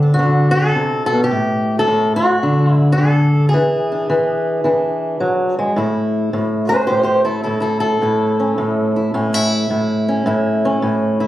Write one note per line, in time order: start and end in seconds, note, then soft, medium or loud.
0.00 0.18 D3 medium
0.00 1.28 C4 soft
0.00 1.29 D4 soft
0.00 0.13 A4 loud
0.14 0.51 F#4 medium
0.19 0.74 D3 medium
0.51 1.05 A4 loud
0.75 1.12 C3 medium
1.06 1.23 A4 loud
1.13 1.30 B2 medium
1.24 1.79 G4 medium
1.31 1.86 A2 medium
1.79 2.16 A4 medium
1.88 2.40 A2 medium
2.16 2.72 F#4 medium
2.43 2.97 D3 medium
2.43 3.52 D4 soft
2.72 2.92 E4 medium
2.92 3.48 A4 medium
2.98 3.51 D3 medium
3.49 5.75 G#4 medium
3.54 4.08 E3 medium
3.92 4.64 D4 soft
4.10 4.63 E3 medium
4.64 5.20 E3 medium
4.64 5.75 D4 soft
5.20 5.58 F#3 medium
5.59 5.77 G#3 medium
5.76 6.33 A2 medium
5.76 6.69 E4 soft
6.33 6.89 A2 medium
6.69 8.39 C#4 soft
6.69 6.86 G4 medium
6.69 6.86 C5 medium
6.87 7.46 A2 medium
6.87 7.02 G4 medium
6.87 7.03 C5 medium
7.03 7.24 G4 medium
7.03 7.25 C5 medium
7.25 7.42 E4 medium
7.25 7.43 A4 medium
7.43 8.01 A2 medium
7.43 7.59 E4 medium
7.43 7.61 A4 medium
7.60 7.81 E4 medium
7.60 7.79 A4 medium
7.80 9.49 A4 medium
8.02 8.57 A2 medium
8.02 8.96 E4 soft
8.40 9.14 C#4 soft
8.58 9.14 A2 medium
8.96 9.14 E4 soft
9.14 9.70 A2 medium
9.14 9.34 C#4 soft
9.34 10.26 E4 soft
9.70 10.25 A2 medium
10.08 10.65 C#4 soft
10.26 10.82 A2 medium
10.26 11.20 E4 medium
10.65 11.27 C#4 medium
10.82 11.27 A2 medium
11.20 11.27 E4 medium